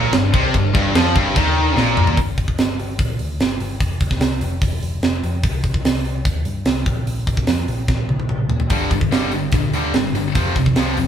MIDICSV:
0, 0, Header, 1, 5, 480
1, 0, Start_track
1, 0, Key_signature, -2, "minor"
1, 0, Tempo, 408998
1, 636, Time_signature, 4, 2, 24, 8
1, 12996, End_track
2, 0, Start_track
2, 0, Title_t, "Tonewheel organ"
2, 0, Program_c, 0, 16
2, 0, Note_on_c, 0, 55, 63
2, 0, Note_on_c, 0, 62, 60
2, 0, Note_on_c, 0, 69, 66
2, 2508, Note_off_c, 0, 69, 0
2, 2509, Note_off_c, 0, 62, 0
2, 2510, Note_off_c, 0, 55, 0
2, 12996, End_track
3, 0, Start_track
3, 0, Title_t, "Distorted electric guitar"
3, 0, Program_c, 1, 30
3, 0, Note_on_c, 1, 46, 106
3, 144, Note_off_c, 1, 46, 0
3, 158, Note_on_c, 1, 43, 78
3, 349, Note_off_c, 1, 43, 0
3, 398, Note_on_c, 1, 48, 97
3, 626, Note_on_c, 1, 43, 72
3, 630, Note_off_c, 1, 48, 0
3, 822, Note_off_c, 1, 43, 0
3, 864, Note_on_c, 1, 43, 99
3, 1102, Note_off_c, 1, 43, 0
3, 1108, Note_on_c, 1, 53, 99
3, 1344, Note_off_c, 1, 53, 0
3, 1344, Note_on_c, 1, 43, 100
3, 1581, Note_off_c, 1, 43, 0
3, 1582, Note_on_c, 1, 51, 106
3, 2057, Note_off_c, 1, 51, 0
3, 2062, Note_on_c, 1, 46, 104
3, 2538, Note_off_c, 1, 46, 0
3, 10216, Note_on_c, 1, 43, 80
3, 10228, Note_on_c, 1, 50, 90
3, 10231, Note_on_c, 1, 55, 83
3, 10445, Note_off_c, 1, 43, 0
3, 10451, Note_off_c, 1, 50, 0
3, 10452, Note_off_c, 1, 55, 0
3, 10459, Note_on_c, 1, 43, 71
3, 10465, Note_on_c, 1, 50, 75
3, 10677, Note_off_c, 1, 43, 0
3, 10681, Note_off_c, 1, 50, 0
3, 10695, Note_on_c, 1, 43, 82
3, 10703, Note_on_c, 1, 50, 82
3, 10711, Note_on_c, 1, 55, 93
3, 10926, Note_off_c, 1, 43, 0
3, 10930, Note_off_c, 1, 50, 0
3, 10934, Note_off_c, 1, 55, 0
3, 10943, Note_on_c, 1, 43, 61
3, 10951, Note_on_c, 1, 50, 72
3, 11161, Note_off_c, 1, 43, 0
3, 11165, Note_off_c, 1, 50, 0
3, 11199, Note_on_c, 1, 43, 65
3, 11202, Note_on_c, 1, 50, 81
3, 11410, Note_off_c, 1, 43, 0
3, 11411, Note_off_c, 1, 50, 0
3, 11428, Note_on_c, 1, 43, 81
3, 11438, Note_on_c, 1, 50, 78
3, 11441, Note_on_c, 1, 55, 91
3, 11655, Note_off_c, 1, 43, 0
3, 11660, Note_off_c, 1, 50, 0
3, 11661, Note_off_c, 1, 55, 0
3, 11673, Note_on_c, 1, 43, 75
3, 11675, Note_on_c, 1, 50, 82
3, 11888, Note_off_c, 1, 43, 0
3, 11889, Note_off_c, 1, 50, 0
3, 11912, Note_on_c, 1, 43, 60
3, 11919, Note_on_c, 1, 50, 68
3, 12128, Note_off_c, 1, 43, 0
3, 12132, Note_off_c, 1, 50, 0
3, 12153, Note_on_c, 1, 41, 72
3, 12155, Note_on_c, 1, 48, 88
3, 12163, Note_on_c, 1, 53, 83
3, 12377, Note_off_c, 1, 41, 0
3, 12381, Note_off_c, 1, 48, 0
3, 12385, Note_off_c, 1, 53, 0
3, 12391, Note_on_c, 1, 41, 68
3, 12399, Note_on_c, 1, 48, 70
3, 12610, Note_off_c, 1, 41, 0
3, 12614, Note_off_c, 1, 48, 0
3, 12638, Note_on_c, 1, 41, 81
3, 12642, Note_on_c, 1, 48, 94
3, 12645, Note_on_c, 1, 53, 91
3, 12857, Note_off_c, 1, 41, 0
3, 12863, Note_off_c, 1, 48, 0
3, 12868, Note_off_c, 1, 53, 0
3, 12871, Note_on_c, 1, 41, 61
3, 12877, Note_on_c, 1, 48, 71
3, 12996, Note_off_c, 1, 41, 0
3, 12996, Note_off_c, 1, 48, 0
3, 12996, End_track
4, 0, Start_track
4, 0, Title_t, "Picked electric bass"
4, 0, Program_c, 2, 34
4, 0, Note_on_c, 2, 34, 89
4, 139, Note_off_c, 2, 34, 0
4, 159, Note_on_c, 2, 31, 76
4, 381, Note_off_c, 2, 31, 0
4, 397, Note_on_c, 2, 36, 95
4, 619, Note_off_c, 2, 36, 0
4, 632, Note_on_c, 2, 31, 83
4, 856, Note_off_c, 2, 31, 0
4, 877, Note_on_c, 2, 31, 94
4, 1099, Note_off_c, 2, 31, 0
4, 1105, Note_on_c, 2, 41, 98
4, 1332, Note_off_c, 2, 41, 0
4, 1352, Note_on_c, 2, 31, 95
4, 1576, Note_off_c, 2, 31, 0
4, 1590, Note_on_c, 2, 39, 95
4, 2037, Note_off_c, 2, 39, 0
4, 2067, Note_on_c, 2, 34, 90
4, 2514, Note_off_c, 2, 34, 0
4, 2550, Note_on_c, 2, 31, 88
4, 2779, Note_off_c, 2, 31, 0
4, 2786, Note_on_c, 2, 31, 81
4, 3020, Note_off_c, 2, 31, 0
4, 3037, Note_on_c, 2, 31, 88
4, 3497, Note_off_c, 2, 31, 0
4, 3504, Note_on_c, 2, 34, 90
4, 3738, Note_off_c, 2, 34, 0
4, 3763, Note_on_c, 2, 38, 71
4, 3978, Note_off_c, 2, 38, 0
4, 3985, Note_on_c, 2, 31, 83
4, 4218, Note_off_c, 2, 31, 0
4, 4228, Note_on_c, 2, 31, 80
4, 4454, Note_off_c, 2, 31, 0
4, 4461, Note_on_c, 2, 29, 86
4, 4696, Note_off_c, 2, 29, 0
4, 4707, Note_on_c, 2, 29, 81
4, 4916, Note_off_c, 2, 29, 0
4, 4923, Note_on_c, 2, 36, 84
4, 5166, Note_off_c, 2, 36, 0
4, 5175, Note_on_c, 2, 29, 80
4, 5408, Note_off_c, 2, 29, 0
4, 5415, Note_on_c, 2, 29, 88
4, 5642, Note_off_c, 2, 29, 0
4, 5649, Note_on_c, 2, 29, 72
4, 5878, Note_off_c, 2, 29, 0
4, 5885, Note_on_c, 2, 29, 83
4, 6126, Note_off_c, 2, 29, 0
4, 6136, Note_on_c, 2, 41, 78
4, 6370, Note_on_c, 2, 36, 94
4, 6388, Note_off_c, 2, 41, 0
4, 6603, Note_off_c, 2, 36, 0
4, 6610, Note_on_c, 2, 36, 80
4, 6848, Note_off_c, 2, 36, 0
4, 6857, Note_on_c, 2, 36, 84
4, 7323, Note_off_c, 2, 36, 0
4, 7329, Note_on_c, 2, 39, 90
4, 7564, Note_off_c, 2, 39, 0
4, 7571, Note_on_c, 2, 43, 69
4, 7793, Note_off_c, 2, 43, 0
4, 7800, Note_on_c, 2, 36, 77
4, 8042, Note_off_c, 2, 36, 0
4, 8047, Note_on_c, 2, 34, 76
4, 8281, Note_off_c, 2, 34, 0
4, 8288, Note_on_c, 2, 34, 90
4, 8521, Note_off_c, 2, 34, 0
4, 8528, Note_on_c, 2, 34, 84
4, 8756, Note_off_c, 2, 34, 0
4, 8763, Note_on_c, 2, 41, 84
4, 8994, Note_off_c, 2, 41, 0
4, 9001, Note_on_c, 2, 34, 81
4, 9243, Note_off_c, 2, 34, 0
4, 9250, Note_on_c, 2, 34, 83
4, 9480, Note_off_c, 2, 34, 0
4, 9487, Note_on_c, 2, 34, 73
4, 9708, Note_off_c, 2, 34, 0
4, 9715, Note_on_c, 2, 34, 78
4, 9949, Note_off_c, 2, 34, 0
4, 9956, Note_on_c, 2, 46, 76
4, 10201, Note_off_c, 2, 46, 0
4, 10215, Note_on_c, 2, 31, 89
4, 10443, Note_off_c, 2, 31, 0
4, 10450, Note_on_c, 2, 31, 77
4, 10676, Note_off_c, 2, 31, 0
4, 10683, Note_on_c, 2, 31, 82
4, 11160, Note_off_c, 2, 31, 0
4, 11178, Note_on_c, 2, 34, 88
4, 11409, Note_off_c, 2, 34, 0
4, 11416, Note_on_c, 2, 38, 72
4, 11643, Note_off_c, 2, 38, 0
4, 11650, Note_on_c, 2, 31, 79
4, 11888, Note_off_c, 2, 31, 0
4, 11895, Note_on_c, 2, 31, 80
4, 12137, Note_off_c, 2, 31, 0
4, 12148, Note_on_c, 2, 29, 88
4, 12380, Note_off_c, 2, 29, 0
4, 12387, Note_on_c, 2, 29, 84
4, 12625, Note_off_c, 2, 29, 0
4, 12631, Note_on_c, 2, 36, 84
4, 12863, Note_off_c, 2, 36, 0
4, 12870, Note_on_c, 2, 29, 82
4, 12996, Note_off_c, 2, 29, 0
4, 12996, End_track
5, 0, Start_track
5, 0, Title_t, "Drums"
5, 148, Note_on_c, 9, 49, 57
5, 152, Note_on_c, 9, 38, 109
5, 266, Note_off_c, 9, 49, 0
5, 269, Note_off_c, 9, 38, 0
5, 396, Note_on_c, 9, 36, 114
5, 513, Note_off_c, 9, 36, 0
5, 636, Note_on_c, 9, 36, 87
5, 638, Note_on_c, 9, 49, 61
5, 754, Note_off_c, 9, 36, 0
5, 755, Note_off_c, 9, 49, 0
5, 878, Note_on_c, 9, 36, 112
5, 995, Note_off_c, 9, 36, 0
5, 1117, Note_on_c, 9, 49, 68
5, 1120, Note_on_c, 9, 38, 121
5, 1234, Note_off_c, 9, 49, 0
5, 1238, Note_off_c, 9, 38, 0
5, 1357, Note_on_c, 9, 36, 99
5, 1475, Note_off_c, 9, 36, 0
5, 1597, Note_on_c, 9, 36, 104
5, 1601, Note_on_c, 9, 49, 64
5, 1714, Note_off_c, 9, 36, 0
5, 1719, Note_off_c, 9, 49, 0
5, 2079, Note_on_c, 9, 38, 63
5, 2196, Note_off_c, 9, 38, 0
5, 2314, Note_on_c, 9, 45, 86
5, 2431, Note_off_c, 9, 45, 0
5, 2433, Note_on_c, 9, 43, 89
5, 2550, Note_on_c, 9, 46, 58
5, 2551, Note_off_c, 9, 43, 0
5, 2551, Note_on_c, 9, 36, 92
5, 2667, Note_off_c, 9, 46, 0
5, 2669, Note_off_c, 9, 36, 0
5, 2790, Note_on_c, 9, 46, 46
5, 2791, Note_on_c, 9, 36, 82
5, 2908, Note_off_c, 9, 36, 0
5, 2908, Note_off_c, 9, 46, 0
5, 2910, Note_on_c, 9, 36, 70
5, 3028, Note_off_c, 9, 36, 0
5, 3033, Note_on_c, 9, 46, 64
5, 3037, Note_on_c, 9, 38, 108
5, 3151, Note_off_c, 9, 46, 0
5, 3154, Note_off_c, 9, 38, 0
5, 3279, Note_on_c, 9, 46, 42
5, 3396, Note_off_c, 9, 46, 0
5, 3509, Note_on_c, 9, 36, 100
5, 3511, Note_on_c, 9, 46, 63
5, 3627, Note_off_c, 9, 36, 0
5, 3628, Note_off_c, 9, 46, 0
5, 3746, Note_on_c, 9, 46, 46
5, 3863, Note_off_c, 9, 46, 0
5, 3994, Note_on_c, 9, 46, 58
5, 3997, Note_on_c, 9, 38, 102
5, 4111, Note_off_c, 9, 46, 0
5, 4115, Note_off_c, 9, 38, 0
5, 4229, Note_on_c, 9, 46, 49
5, 4346, Note_off_c, 9, 46, 0
5, 4465, Note_on_c, 9, 36, 97
5, 4467, Note_on_c, 9, 46, 59
5, 4582, Note_off_c, 9, 36, 0
5, 4585, Note_off_c, 9, 46, 0
5, 4700, Note_on_c, 9, 46, 53
5, 4703, Note_on_c, 9, 36, 85
5, 4818, Note_off_c, 9, 46, 0
5, 4821, Note_off_c, 9, 36, 0
5, 4822, Note_on_c, 9, 36, 77
5, 4825, Note_on_c, 9, 38, 28
5, 4938, Note_on_c, 9, 46, 68
5, 4939, Note_off_c, 9, 36, 0
5, 4941, Note_off_c, 9, 38, 0
5, 4941, Note_on_c, 9, 38, 105
5, 5055, Note_off_c, 9, 46, 0
5, 5058, Note_off_c, 9, 38, 0
5, 5178, Note_on_c, 9, 46, 50
5, 5295, Note_off_c, 9, 46, 0
5, 5418, Note_on_c, 9, 36, 101
5, 5418, Note_on_c, 9, 46, 71
5, 5535, Note_off_c, 9, 46, 0
5, 5536, Note_off_c, 9, 36, 0
5, 5663, Note_on_c, 9, 46, 47
5, 5781, Note_off_c, 9, 46, 0
5, 5900, Note_on_c, 9, 46, 58
5, 5904, Note_on_c, 9, 38, 101
5, 6018, Note_off_c, 9, 46, 0
5, 6021, Note_off_c, 9, 38, 0
5, 6145, Note_on_c, 9, 46, 48
5, 6262, Note_off_c, 9, 46, 0
5, 6379, Note_on_c, 9, 36, 102
5, 6380, Note_on_c, 9, 46, 59
5, 6496, Note_off_c, 9, 36, 0
5, 6497, Note_off_c, 9, 46, 0
5, 6616, Note_on_c, 9, 36, 81
5, 6621, Note_on_c, 9, 46, 46
5, 6734, Note_off_c, 9, 36, 0
5, 6738, Note_off_c, 9, 46, 0
5, 6739, Note_on_c, 9, 36, 74
5, 6857, Note_off_c, 9, 36, 0
5, 6865, Note_on_c, 9, 46, 65
5, 6869, Note_on_c, 9, 38, 107
5, 6983, Note_off_c, 9, 46, 0
5, 6986, Note_off_c, 9, 38, 0
5, 7102, Note_on_c, 9, 46, 43
5, 7219, Note_off_c, 9, 46, 0
5, 7337, Note_on_c, 9, 36, 107
5, 7340, Note_on_c, 9, 46, 57
5, 7455, Note_off_c, 9, 36, 0
5, 7457, Note_off_c, 9, 46, 0
5, 7572, Note_on_c, 9, 46, 43
5, 7689, Note_off_c, 9, 46, 0
5, 7811, Note_on_c, 9, 46, 60
5, 7814, Note_on_c, 9, 38, 104
5, 7928, Note_off_c, 9, 46, 0
5, 7932, Note_off_c, 9, 38, 0
5, 8052, Note_on_c, 9, 46, 46
5, 8053, Note_on_c, 9, 36, 95
5, 8169, Note_off_c, 9, 46, 0
5, 8171, Note_off_c, 9, 36, 0
5, 8298, Note_on_c, 9, 46, 64
5, 8416, Note_off_c, 9, 46, 0
5, 8534, Note_on_c, 9, 36, 85
5, 8536, Note_on_c, 9, 46, 51
5, 8651, Note_off_c, 9, 36, 0
5, 8652, Note_on_c, 9, 36, 76
5, 8653, Note_off_c, 9, 46, 0
5, 8767, Note_on_c, 9, 46, 70
5, 8770, Note_off_c, 9, 36, 0
5, 8771, Note_on_c, 9, 38, 107
5, 8885, Note_off_c, 9, 46, 0
5, 8888, Note_off_c, 9, 38, 0
5, 9015, Note_on_c, 9, 46, 49
5, 9133, Note_off_c, 9, 46, 0
5, 9252, Note_on_c, 9, 36, 103
5, 9255, Note_on_c, 9, 38, 53
5, 9369, Note_off_c, 9, 36, 0
5, 9372, Note_off_c, 9, 38, 0
5, 9495, Note_on_c, 9, 48, 62
5, 9612, Note_off_c, 9, 48, 0
5, 9618, Note_on_c, 9, 48, 59
5, 9730, Note_on_c, 9, 47, 69
5, 9736, Note_off_c, 9, 48, 0
5, 9848, Note_off_c, 9, 47, 0
5, 9970, Note_on_c, 9, 43, 81
5, 10087, Note_off_c, 9, 43, 0
5, 10090, Note_on_c, 9, 43, 81
5, 10208, Note_off_c, 9, 43, 0
5, 10208, Note_on_c, 9, 46, 64
5, 10213, Note_on_c, 9, 36, 96
5, 10325, Note_off_c, 9, 46, 0
5, 10330, Note_off_c, 9, 36, 0
5, 10456, Note_on_c, 9, 36, 78
5, 10457, Note_on_c, 9, 46, 46
5, 10573, Note_off_c, 9, 36, 0
5, 10574, Note_off_c, 9, 46, 0
5, 10577, Note_on_c, 9, 36, 69
5, 10695, Note_off_c, 9, 36, 0
5, 10705, Note_on_c, 9, 46, 59
5, 10708, Note_on_c, 9, 38, 98
5, 10822, Note_off_c, 9, 46, 0
5, 10826, Note_off_c, 9, 38, 0
5, 10933, Note_on_c, 9, 46, 46
5, 11050, Note_off_c, 9, 46, 0
5, 11168, Note_on_c, 9, 46, 63
5, 11179, Note_on_c, 9, 36, 105
5, 11285, Note_off_c, 9, 46, 0
5, 11296, Note_off_c, 9, 36, 0
5, 11424, Note_on_c, 9, 46, 42
5, 11541, Note_off_c, 9, 46, 0
5, 11665, Note_on_c, 9, 46, 60
5, 11668, Note_on_c, 9, 38, 97
5, 11782, Note_off_c, 9, 46, 0
5, 11785, Note_off_c, 9, 38, 0
5, 11913, Note_on_c, 9, 46, 48
5, 12030, Note_off_c, 9, 46, 0
5, 12147, Note_on_c, 9, 46, 64
5, 12151, Note_on_c, 9, 36, 100
5, 12265, Note_off_c, 9, 46, 0
5, 12269, Note_off_c, 9, 36, 0
5, 12388, Note_on_c, 9, 46, 53
5, 12392, Note_on_c, 9, 36, 82
5, 12505, Note_off_c, 9, 46, 0
5, 12509, Note_off_c, 9, 36, 0
5, 12513, Note_on_c, 9, 36, 72
5, 12626, Note_on_c, 9, 46, 68
5, 12630, Note_off_c, 9, 36, 0
5, 12630, Note_on_c, 9, 38, 100
5, 12744, Note_off_c, 9, 46, 0
5, 12747, Note_off_c, 9, 38, 0
5, 12873, Note_on_c, 9, 46, 52
5, 12990, Note_off_c, 9, 46, 0
5, 12996, End_track
0, 0, End_of_file